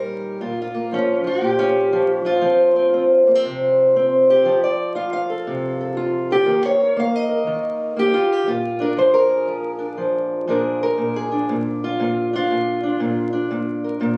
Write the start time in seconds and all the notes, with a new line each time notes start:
Already playing: A#2 D#3 G3 C#4 D#4 A#4
0.41 A#2 F4
0.62 F4
0.74 A#3
0.92 F3 C#4
1.24 F3 F#4
1.41 A#2
1.45 G4
1.59 C#4
1.93 F3
2.25 F3 F4
2.42 F3 C4
2.76 C4
2.93 C4
3.27 A#3
3.35 C4
3.45 C3
3.96 C4
4.30 G4
4.45 F3
4.64 D5
4.95 F4 F5
5.13 F5
5.30 A4
5.47 C3
5.81 A4
5.97 F4
6.31 G4 A4
6.46 D#3 A#3
6.66 C#5
6.80 A#4
6.96 A#3 F5
7.16 D#5
7.29 A#4
7.47 D#3
7.97 A#3 G4
8.14 F4
8.32 G4
8.46 A#2 F4
8.80 D4 A#4
8.97 F3 C5
9.14 A#4
9.29 G#4
9.47 F3
9.79 D4
9.98 F3
10.47 A#2 F3 D4 G#4 A#4
10.83 A#4
10.98 A#2
11.16 G#4
11.32 D4
11.49 A#2
11.84 F4
12.00 A#2
12.33 D4 F4
12.51 A#2
12.83 D4
13.00 A#2
13.33 D4
13.51 A#2
13.84 A#4
14.01 A#2